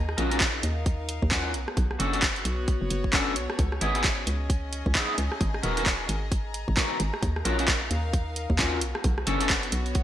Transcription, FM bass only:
Already playing: D#2
0.18 A#1
0.63 D#2
1.22 D#2
1.54 B1
1.77 B1
2.00 F#1
2.45 B1
2.81 F#1
2.91 F#1
3.36 B1
3.59 C#2
3.81 G#1
4.27 C#2
4.86 C#2
5.18 C#2
5.41 G#1
5.63 D#1
6.09 G#1
6.68 G#1
7.00 G#1
7.23 D#2
7.45 A#1
7.91 D#2
8.50 D#2
8.82 B1
9.04 B1
9.27 F#1
9.72 B1

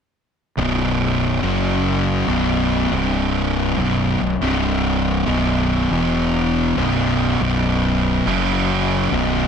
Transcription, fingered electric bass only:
0.58 B0
1.42 F#1
2.27 B0
2.91 C1
3.77 B0
4.20 B0
4.41 C1
5.27 B0
5.91 E1
6.77 B0
7.40 B0
8.26 F#1
9.11 B0

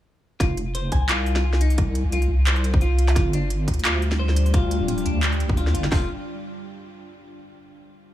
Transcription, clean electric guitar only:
0.40 F4
0.75 C5
1.09 F4
1.44 F4
1.61 D#4
2.13 F4
2.47 C5
2.82 F4
3.16 F4
3.33 D4
3.85 F4
4.19 C5
4.54 F4
4.88 F4
5.06 D4
5.57 F4
5.74 F4
5.91 F4

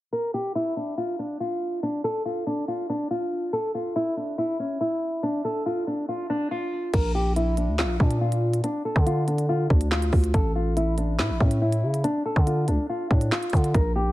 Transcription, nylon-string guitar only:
0.13 A#4
0.34 G4
0.55 E4
0.77 D4
0.98 F4
1.19 D4
1.40 F4
1.83 D4
2.04 A4
2.25 F4
2.47 D4
2.68 F4
2.90 D4
3.11 F4
3.53 A4
3.75 F4
3.96 E4
4.17 D4
4.38 E4
4.59 C#4
4.81 E4
5.23 D4
5.45 A4
5.66 F4
5.87 D4
6.09 F4
6.30 D4
6.51 F4
6.94 A#4
7.15 G4
7.36 E4
7.58 D4
7.79 F4
8.00 D4
8.21 F4
8.64 D4
8.85 A4
9.06 F4
9.28 D4
9.49 F4
9.70 D4
9.92 F4
10.34 A4
10.56 F4
10.77 E4
10.98 D4
11.19 E4
11.40 C#4
11.62 E4
12.04 D4
12.26 A4
12.47 F4
12.68 D4
12.89 F4
13.11 D4
13.32 F4
13.74 A#4
13.96 G4

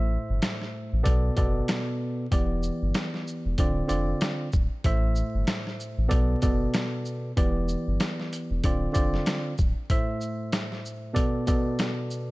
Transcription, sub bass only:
Already playing: A1
0.30 G1
0.93 A1
1.06 B1
1.38 F#1
2.32 E1
2.82 G1
3.45 E1
3.58 D1
3.90 F1
4.54 D1
4.84 A1
5.35 G1
5.98 A1
6.11 B1
6.43 F#1
7.37 E1
7.87 G1
8.51 E1
8.64 D1
8.96 F1
9.59 D1

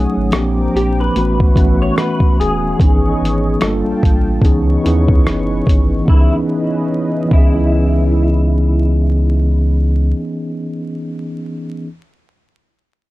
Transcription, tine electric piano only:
Already playing: F#3 A3 C#4 D#4 G#4
0.31 F3 A#3 C4 D4 G4
1.14 E3 A3 B3 C#4 F#4
1.54 E3 A3 B3 C#4 F#4
2.78 E3 B3 C#4 D#4 G#4
3.60 G3 A3 D4 F4 A4
3.67 A#3
4.42 E3 B3 C#4 D#4 G#4
4.83 B3 C#4 D#4 E4 G#4
6.02 E3 B3
6.08 C#4 D#4
6.14 G#4
7.25 E3 B3
7.31 C#4 D#5
7.38 G#4

